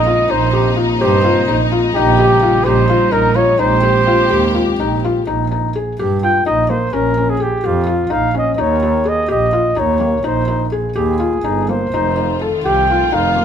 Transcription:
Already playing: double bass A#1, string section C#3 G#3 C4 D#4, flugelhorn D#5
0.06 felt piano F4
0.29 double bass A#1, string section C3 A#3, felt piano D#4, flugelhorn C5
0.53 felt piano G4
0.76 felt piano F4
1.00 double bass G2, felt piano G4, flugelhorn C5
1.24 felt piano F4
1.48 double bass A#1, felt piano D#4
1.72 felt piano F4
1.95 double bass A#1, string section C#3 G3, felt piano D#4, flugelhorn G4
2.19 felt piano G4
2.42 felt piano F4
2.65 double bass A#1, felt piano G4, flugelhorn C5
2.90 felt piano F4
3.12 double bass A#1, felt piano D#4, flugelhorn A#4
3.35 felt piano F4, flugelhorn C#5
3.59 double bass A#1, string section C3 G#3 G4, felt piano D#4, flugelhorn C5
3.83 felt piano G4
4.07 felt piano F4
4.30 double bass D#2, felt piano G4
4.55 felt piano F4
4.79 double bass A#1, felt piano D#4
5.04 felt piano F4
5.27 double bass A#1, felt piano D#4
5.51 felt piano D#4
5.75 felt piano G#4
5.99 double bass G2, felt piano G4
6.23 felt piano F4, flugelhorn G5
6.46 double bass A#1, felt piano D#4, flugelhorn D#5
6.70 felt piano A#3, flugelhorn C5
6.93 double bass A#1, felt piano C#4, flugelhorn A#4
7.17 felt piano C#4
7.30 flugelhorn G#4
7.40 flugelhorn G4, felt piano G#4
7.64 double bass F2, flugelhorn F4, felt piano G4
7.87 felt piano F4
8.10 double bass A#1, felt piano D#4, flugelhorn F5
8.34 felt piano C#4, flugelhorn D#5
8.54 felt piano D#4, flugelhorn D#5
8.59 double bass D#2, flugelhorn C#5
8.83 felt piano D#4
9.05 felt piano G#4, flugelhorn D#5
9.28 double bass A#1, felt piano G4, flugelhorn D#5
9.53 felt piano F4
9.76 double bass D#2, felt piano D#4, flugelhorn C#5
10.00 felt piano A#3
10.24 double bass A#1, felt piano D#4, flugelhorn C5
10.48 felt piano D#4
10.72 felt piano G#4
10.96 double bass D#2, felt piano G4, flugelhorn G#4
11.20 felt piano F4
11.44 double bass G1, felt piano D#4
11.69 felt piano A#3, flugelhorn C5
11.92 double bass F1, string section D#3 A3 F4, felt piano D#4
12.17 felt piano D#4
12.42 felt piano A4
12.64 double bass C2, felt piano G4, flugelhorn G5
12.90 felt piano F4
13.11 double bass F1, felt piano D#4, flugelhorn F5
13.36 felt piano A#3

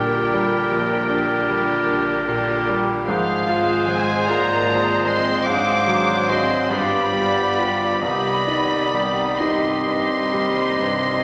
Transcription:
Already playing: double bass section A#1, grand piano A#1 A#2 G3 D4, cello section A#2, viola section D3 D4, french horn section G3, bassoon G3, violin section G4 A#4 G5, flute A#4, clarinet A#4, oboe D5
0.34 grand piano G3
0.71 grand piano A#1, double bass section A#1, cello section A#2
1.09 viola section D3 D4, grand piano D4, violin section G4 A#4
1.50 grand piano G3
1.88 double bass section A#1, cello section A#2, grand piano D4
2.28 grand piano A#2, viola section D3 D4, violin section G4 A#4
2.69 grand piano G3
3.06 double bass section G#1, cello section G#2, grand piano G#2, french horn section F3, bassoon G#3, flute G#4, clarinet G#4, oboe C5, violin section F5
3.46 viola section F3 C4, grand piano F4, violin section G#4 C5
3.86 grand piano G#3, french horn section G#3, flute C5, violin section G#5
4.26 double bass section G#1, cello section G#2, french horn section A#3, grand piano F4, flute D5, violin section A#5
4.66 viola section F3 C4, grand piano F3, violin section G#4 C5
5.05 grand piano G#3, french horn section C4, flute D#5, violin section C6
5.45 double bass section G#1, grand piano G#2, cello section G#2, viola section F#3 C4, bassoon F#3, french horn section D4, violin section G#4 C5 D6, clarinet G#4, oboe C5, flute F5
5.87 grand piano F#3, viola section F#3 C4, violin section G#4 C5
6.28 french horn section C4, grand piano F#4 C5, flute D#5, violin section C6
6.70 double bass section G1, grand piano G2, cello section G2, bassoon F3, viola section G3 D4, french horn section B3, violin section F4 G4 B5, clarinet G4, flute D5, oboe D5
7.13 grand piano G3, viola section G3 D4, violin section F4 G4
7.58 grand piano F4 G4
8.01 grand piano C2, double bass section C2, cello section C3, bassoon D#3, viola section G3 C4, french horn section B3, violin section D#4 G4 B5, clarinet G4, flute D5, oboe D#5
8.47 viola section G3 C4, violin section D#4 G4, grand piano D#4
8.94 grand piano G3
9.39 double bass section C2, cello section G2, bassoon D#3, french horn section C4, grand piano D#4, clarinet G4, oboe D#5, flute D#5, violin section C6
9.86 grand piano G2, viola section G3 C4, violin section D#4 G4
10.33 cello section A#2, grand piano G3
10.78 double bass section C2, grand piano G2, cello section C3

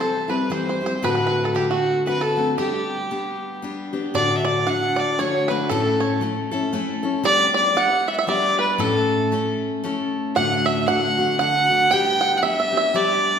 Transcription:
0.00 steel-string acoustic guitar E3 G3 C4 E4, fiddle A4, five-string banjo A4
0.28 steel-string acoustic guitar G3 C4 E4, five-string banjo B4, fiddle B4
0.50 steel-string acoustic guitar E3 G3 C4 E4, five-string banjo C5, fiddle C5
0.69 five-string banjo C5
0.81 steel-string acoustic guitar G3 C4 E4
0.86 five-string banjo C5
1.02 steel-string acoustic guitar D2 A2 D3 A3 C4 F#4, fiddle B4, five-string banjo B4
1.15 five-string banjo B4
1.27 five-string banjo B4
1.44 fiddle A4, five-string banjo A4
1.51 steel-string acoustic guitar D3 C4, fiddle A4
1.55 steel-string acoustic guitar A3 F#4, fiddle G4, five-string banjo G4
1.71 five-string banjo F#4, fiddle F#4
2.06 steel-string acoustic guitar D3 A3 C4 F#4, five-string banjo B4, fiddle B4
2.21 five-string banjo A4, fiddle A4
2.36 steel-string acoustic guitar D3 A3 C4 F#4
2.58 steel-string acoustic guitar G3 B3 D4 G4, five-string banjo G4, fiddle G4
3.11 steel-string acoustic guitar G3 B3 D4 G4
3.62 steel-string acoustic guitar G3 B3 D4 G4
3.93 steel-string acoustic guitar B3 D4 G4
4.14 steel-string acoustic guitar D2 A2 D3 A3 D4 F#4, five-string banjo D5, fiddle D5
4.38 fiddle E5
4.45 five-string banjo D5, fiddle D5
4.66 steel-string acoustic guitar D3 A3 D4 F#4, five-string banjo F#5, fiddle F#5
4.96 five-string banjo D5, fiddle D5
5.19 steel-string acoustic guitar D3 A3 D4 F#4, five-string banjo C#5, fiddle C#5
5.48 steel-string acoustic guitar D3 A3 D4 F#4, five-string banjo B4, fiddle B4
5.69 steel-string acoustic guitar A2 A3 C#4 E4 A4, five-string banjo A4, fiddle A4
6.00 five-string banjo C#5
6.21 steel-string acoustic guitar A3 C#4 E4 A4
6.51 steel-string acoustic guitar C#4 E4 A4
6.73 steel-string acoustic guitar A3 C#4 E4 A4
7.03 steel-string acoustic guitar C#4 E4 A4
7.23 steel-string acoustic guitar G3 B3 D4 G4, fiddle D5, five-string banjo D5
7.54 five-string banjo D5, fiddle D5
7.75 steel-string acoustic guitar G3 B3 D4 G4, five-string banjo F#5, fiddle F#5
8.08 five-string banjo E5, fiddle E5
8.13 fiddle E5
8.19 five-string banjo E5, fiddle E5
8.27 steel-string acoustic guitar G3 B3 D4 G4, five-string banjo D5, fiddle D5
8.59 five-string banjo B4, fiddle B4
8.78 steel-string acoustic guitar A2 A3 C#4 E4 A4, five-string banjo A4, fiddle A4
9.32 steel-string acoustic guitar A3 C#4 E4 A4
9.84 steel-string acoustic guitar A3 C#4 E4 A4
10.35 steel-string acoustic guitar D2 A2 D3 A3 D4 F#4, fiddle F#5, five-string banjo F#5
10.66 fiddle E5, five-string banjo E5
10.87 steel-string acoustic guitar D3 A3 D4 F#4, fiddle F#5, five-string banjo F#5
11.18 steel-string acoustic guitar D3 A3 D4 F#4
11.39 steel-string acoustic guitar D3 A3 D4 F#4, five-string banjo F#5, fiddle F#5
11.69 steel-string acoustic guitar D3 A3 D4 F#4
11.91 steel-string acoustic guitar G3 B3 D4 G4, five-string banjo G5, fiddle G5
12.21 five-string banjo F#5
12.37 fiddle F#5
12.42 steel-string acoustic guitar G3 B3 D4 G4, fiddle E5, five-string banjo E5
12.60 five-string banjo E5
12.72 steel-string acoustic guitar B3 D4 G4
12.77 five-string banjo E5
12.94 steel-string acoustic guitar G3 B3 D4 G4, fiddle D5, five-string banjo D5

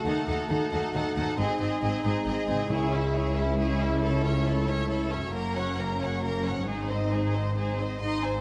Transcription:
Already playing: harp D#3 F#3 A3 F#4, french horn section A3 F#4
0.02 double bass section D#2, viola section D#4, harp A4
0.06 cello section D#3, violin section A4 F#5
0.26 double bass section D#2, cello section D#3, viola section D#4, violin section A4 F#5
0.49 double bass section D#2, cello section D#3, viola section D#4, violin section A4 F#5
0.71 double bass section D#2, cello section D#3, viola section D#4, violin section A4 F#5
0.94 double bass section D#2, cello section D#3, viola section D#4, violin section A4 F#5
1.15 double bass section D#2, cello section D#3, viola section D#4, violin section A4 F#5
1.20 harp G#2
1.24 harp C4
1.29 harp D#4
1.33 cello section G#2, viola section C4, harp G#4
1.38 double bass section G#1, french horn section G#3 D#4, violin section G#4 D#5
1.59 double bass section G#1, cello section G#2, viola section C4, violin section G#4 D#5
1.81 double bass section G#1, cello section G#2, viola section C4, violin section G#4 D#5
2.03 double bass section G#1, cello section G#2, viola section C4, violin section G#4 D#5
2.25 double bass section G#1, cello section G#2, viola section C4, violin section G#4 D#5
2.47 double bass section G#1, cello section G#2, viola section C4, violin section G#4 D#5
2.51 harp C#3
2.56 harp C#4
2.60 harp E4
2.65 harp G#4
2.69 cello section C#2, double bass section C#2, timpani C#3, viola section E4, french horn section E4, violin section G#4 C#5
2.91 viola section C#4, violin section E4 E5
3.14 viola section E4, violin section G#4 C#5
3.35 viola section C#4, violin section E4 E5
3.57 viola section E4, violin section G#4 C#5
3.79 harp C#3, viola section C#4, violin section E4 E5
3.87 harp C#4
3.92 harp E4
3.96 harp A4
4.01 french horn section A3, viola section E4, violin section A4 C#5
4.23 viola section C#4, violin section C#5 E5
4.45 viola section E4, violin section A4 C#5
4.66 viola section C#4, violin section C#5 E5
4.88 viola section E4, violin section A4 C#5
5.10 viola section C#4, violin section C#5 E5
5.15 harp F#2
5.19 harp C#4
5.24 harp F#4
5.28 viola section A#3, harp A#4
5.32 double bass section F#1, cello section F#2, french horn section A#3 C#4, violin section A#4 A#5
5.55 viola section C#4, violin section C#5 F#5
5.77 viola section A#3, violin section A#4 A#5
5.99 viola section C#4, violin section C#5 F#5
6.22 viola section A#3, violin section A#4 A#5
6.44 harp G#2, viola section C#4, violin section C#5 F#5
6.52 harp C4
6.56 harp D#4
6.61 harp G#4
6.66 double bass section G#1, cello section G#2, french horn section C4 D#4, viola section D#4, violin section G#4 C5
6.89 viola section C4, violin section C5 D#5
7.11 viola section D#4, violin section G#4 C5
7.33 viola section C4, violin section C5 D#5
7.55 viola section D#4, violin section G#4 C5
7.78 viola section C4, violin section C5 D#5
8.00 double bass section G#1, harp G#2, cello section G#2, viola section D#4, clarinet D#4, violin section D#5 C6
8.21 viola section C4, harp C4, violin section C5 G#5

